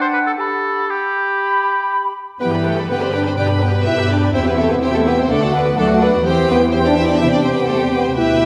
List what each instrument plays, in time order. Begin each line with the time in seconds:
Already playing: clarinet D4, flute F#5
0.01 oboe C5
0.14 oboe B4
0.27 oboe A4
0.38 clarinet G4, oboe A4, flute B5
0.90 oboe G4, flute B5
2.41 double bass section G2, cello section E3, french horn section B3, viola section G4 B4, violin section B4 G5
2.54 viola section G4 B4, violin section D5 B5
2.65 french horn section A3, viola section G4 B4, violin section A4 B4 G5
2.78 viola section G4 B4, violin section D5 B5
2.89 double bass section G2, cello section D3, french horn section B3, viola section G4 B4, violin section B4 G5
3.01 french horn section C4, viola section G4 B4, violin section C5 D5 B5
3.13 french horn section D4, viola section G4 B4, violin section B4 D5 G5
3.25 french horn section C4, viola section G4 B4, violin section C5 D5 B5
3.36 double bass section G2, cello section B2, french horn section D4, viola section G4 B4, violin section B4 D5 G5
3.49 viola section G4 B4, violin section D5 B5
3.61 french horn section B3, viola section G4 B4, violin section B4 G5
3.73 viola section G4 B4, violin section D5 B5
3.85 double bass section G2, french horn section E4, viola section G4 B4, violin section B4 E5 G5
3.98 viola section G4 B4, violin section D5 B5
4.09 french horn section D4, viola section G4 B4, violin section B4 D5 G5
4.22 viola section G4 B4, violin section D5 B5
4.33 double bass section E2, cello section C3, french horn section C4, viola section E4 G4, violin section C5 E5 G5
4.45 french horn section B3, viola section E4 G4, violin section B4 C5 E5
4.58 french horn section A3, viola section E4 G4, violin section A4 E5 G5
4.70 french horn section B3, viola section E4 G4, violin section B4 C5 E5
4.82 double bass section E2, french horn section C4, viola section E4 G4, violin section C5 E5 G5
4.94 french horn section A3, viola section E4 G4, violin section A4 C5 E5
5.06 french horn section B3, viola section E4 G4, violin section B4 E5 G5
5.18 french horn section C4, viola section E4 G4, violin section C5 E5
5.30 double bass section D2, cello section D3, french horn section A3, viola section D4 A4, violin section A4 D5 F#5
5.42 viola section F#4, violin section D5 F#5
5.53 french horn section B3, viola section D4 A4, violin section B4 D5 F#5
5.66 viola section F#4, violin section D5 F#5
5.77 double bass section D2, cello section F#3, french horn section A3, viola section D4 A4, violin section A4 D5 F#5
5.90 viola section F#4, violin section D5 F#5
6.02 french horn section B3, viola section D4 A4, violin section B4 D5 F#5
6.13 viola section F#4, violin section D5 F#5
6.25 double bass section E2, cello section E3, french horn section C4, viola section G4, violin section C5 G5
6.49 french horn section B3, violin section B4
6.72 french horn section C4, viola section G4, violin section C5 G5
6.84 french horn section D4, violin section D5
6.95 french horn section E4, violin section E5
7.07 french horn section D4, violin section D5
7.19 cello section C3, french horn section E4, viola section G4, violin section C5 E5 G5
7.32 french horn section D4, violin section D5
7.43 french horn section C4, violin section C5
7.55 french horn section B3, violin section B4
7.67 cello section C3, french horn section A3, violin section A4
7.79 french horn section G3, violin section G4
7.92 french horn section B3, violin section B4
8.05 french horn section C4, violin section C5
8.17 double bass section D2, cello section B2, french horn section E4, viola section G4 B4, violin section B4 E5 G5